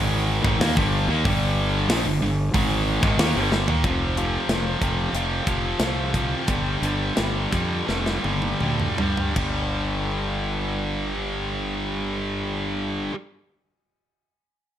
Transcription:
Already playing: G#1 G#2 D#3 G#3
0.43 G#1 G#2 D#3, kick
0.60 D#2 D#3 A#3, snare, open hi-hat
0.76 G1 G2 D3 G3, kick
1.08 D#2 D#3 A#3
1.24 G1 G2 D3 G3, kick, open hi-hat
1.89 A#1 A#2 F3, snare, open hi-hat
2.05 G1 G2 D3
2.22 G1 G2 D3
2.54 G#1 G#2 D#3 G#3, kick, open hi-hat
3.03 G#1 G#2 D#3, kick
3.18 D#2 D#3 A#3, snare, open hi-hat
3.35 G1 G2 D3 G3
3.52 snare
3.68 D#2 D#3 A#3, floor tom
3.84 F1 F2 C3 F3, kick, closed hi-hat
4.17 F2 C3 F3, closed hi-hat
4.49 F1 F2 C3 F3, snare, closed hi-hat
4.81 F1 F2 C3 F3, kick, closed hi-hat
5.13 F1 F2 C3 F3, closed hi-hat
5.47 F1 F2 C3 F3, kick, closed hi-hat
5.80 C2 F2 C3 F3, snare, closed hi-hat
6.14 F2 C3 F3, kick, closed hi-hat
6.47 G1 G2 D3 G3, kick, closed hi-hat
6.81 G1 G2 D3 G3, closed hi-hat
7.16 G1 G2 D3 G3, snare, closed hi-hat
7.51 F2 G2 D3 G3, kick, closed hi-hat
7.87 F1 G2 D3 G3, snare
8.06 snare
8.24 G1 G2 D3 G3, high tom
8.42 high tom
8.60 D2 G2 D3 G3, mid tom
8.80 mid tom
8.97 G2 D3 G3, floor tom
9.17 floor tom
9.35 G1 G2 D3 G3, kick, crash

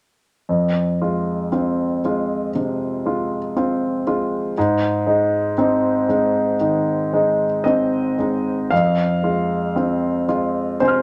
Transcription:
0.49 F2
1.02 G#3 F4
1.52 C4 F4
2.05 G#3 F4
2.55 C3
3.06 G#3 F4
3.56 C4 F4
4.07 G#3 F4
4.58 G#2
5.07 G#3 D#4
5.58 C4 D#4
6.09 G#3 D#4
6.60 D#3
7.13 G#3 D#4
7.64 C4 D#4 D#5
8.19 G#3 D#4
8.71 F2 F5
9.24 G#3 F4
9.76 C4 F4
10.28 G#3 F4
10.80 C3 C5 G#5 C6
10.88 F6

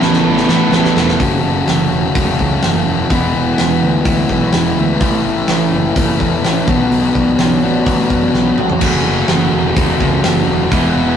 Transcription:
Already playing: A3 B3 E4 A4
0.01 A1 B3 E4 A4, snare
0.13 snare
0.24 A1 A3 B3 E4 A4
0.37 snare
0.49 A2 B3 E4 A4, snare
0.72 A1 A3 B3 E4 A4, snare
0.85 snare
0.95 E1 B3 E4 A4, snare
1.08 snare
1.19 F#1 F#2 C#3 F#3 A3 C#4, kick, open hi-hat
1.43 F#1 C#4
1.67 F#1 A4, snare, open hi-hat
1.91 E1 C#4
2.15 E1 F#2 C#3 F#3 A3 C#4, kick, open hi-hat
2.38 C#2 C#4, kick
2.63 F#1 A4, snare, open hi-hat
2.86 E1 E4
3.09 E1 E3 G#3 B3 E4, kick, open hi-hat
3.34 E1 B3
3.58 E1 G#4, snare, open hi-hat
3.81 D2 B3
4.04 D2 E3 F#3 G#3 B3 E4, kick, open hi-hat
4.29 B1 B3, kick
4.53 E1 G#4, snare, open hi-hat
4.77 D2 E4
5.00 A1 A2 E3 A3 C#4 E4, kick, open hi-hat
5.25 A1 E4
5.48 A1 C#5, snare, open hi-hat
5.72 F#1 E4
5.95 F#1 A2 E3 A3 B3 C#4 E4, kick, open hi-hat
6.18 E2 E4, kick
6.42 A1 C#5, snare, open hi-hat
6.67 B1 B2 F#3 B3 D4 F#4, kick
6.90 B1 B2, open hi-hat
7.14 B1 D4, kick
7.38 B1 C#5, snare, open hi-hat
7.63 A1 B2 F#3 B3 D4 F#4
7.86 A1 B3, kick, open hi-hat
8.10 F#2 D4, kick
8.33 B1 C#5, snare
8.57 A1 F#4, mid tom
8.70 floor tom
8.81 F#1 F#2 C#3 F#3 A3 C#4 F#4, kick, open hi-hat, crash
9.05 F#1
9.28 F#1, snare, open hi-hat
9.53 E1
9.75 E1 F#3 A3 C#4 F#4, kick, open hi-hat
10.00 C#2, kick
10.24 F#1, snare, open hi-hat
10.48 E1
10.70 E1 E2 B2 E3 G#3 B3 E4, kick, open hi-hat
10.84 snare
10.96 E1

